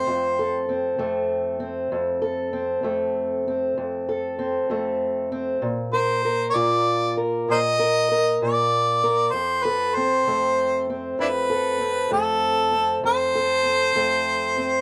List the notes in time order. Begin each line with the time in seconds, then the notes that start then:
Already playing: A3 C4 A4 C5
0.07 F2
0.39 A4
0.69 C4
0.99 F2 A3
1.60 C4
1.92 F2
2.22 A4
2.53 C4
2.83 F2 A3
3.48 C4
3.77 F2
4.09 A4
4.39 C4
4.70 F2 A3
5.32 C4
5.62 A#2
5.93 A#4 C5
6.25 A#4
6.50 C#5 D5
6.54 A#2 F4
7.17 A#4
7.49 A#2 A#4 C5 D#5
7.79 A#4
8.11 A#4
8.42 A#2 F4 D5
9.04 A#4
9.32 F2 C5
9.64 A4 B4
9.95 C4 C5
10.27 F2 A3
10.90 C4
11.19 F2 D4 E4 B4
11.50 A4
11.80 C4
12.11 F2 A3 A4
12.72 C4
13.04 F2 C5
13.35 A4
13.65 C4
13.96 F2 A3
14.57 C4